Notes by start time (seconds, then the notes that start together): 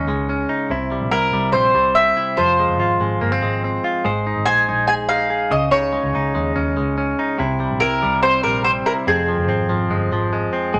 Already playing: C#3 C#4 D#4 G#4
0.08 C#2 G#3
0.29 C#4
0.49 D#4
0.70 C2 C3 E4
0.92 G3
1.02 A#1
1.11 C2 E4 A#4
1.32 C2 G3
1.52 A#1 C4 C5
1.74 C2 G3
1.95 C4 E5
2.17 E4
2.37 F1 F3 F4 C5
2.59 G#3
2.69 F1
2.79 G#1 F4
3.00 G#1 G#3
3.21 G1 A#3
3.32 C4
3.42 G#1 G#3
3.64 C4
3.84 F4
4.05 G#1 G#3 C5
4.27 D#4
4.36 G#1
4.46 A#1 C5 G#5
4.69 A#1 D#4
4.87 G#4 G#5
5.09 D#4 F5
5.30 G#4
5.51 C#2 C#3 D#5
5.71 C#3 D#4 C#5
5.93 G#3
6.04 C#2
6.14 C#2 D#4
6.35 D#2 G#3
6.56 D#2 C#4
6.77 C#2 G#3
6.98 C#4
7.19 D#4
7.39 C2 C3 E4
7.60 G3
7.71 A#1
7.80 C2 E4 A#4
8.02 C2 G3
8.23 C4 C5
8.43 A#1 G3 A#4
8.64 C4 C5
8.86 E4 A#4
9.07 F1 F2 C4 G#4
9.28 F3
9.38 F1
9.48 G#1 C4
9.69 G#1 F3
9.91 G1 G#3
10.12 G#1 F3
10.33 G#3
10.53 C4
10.74 G#1 G#3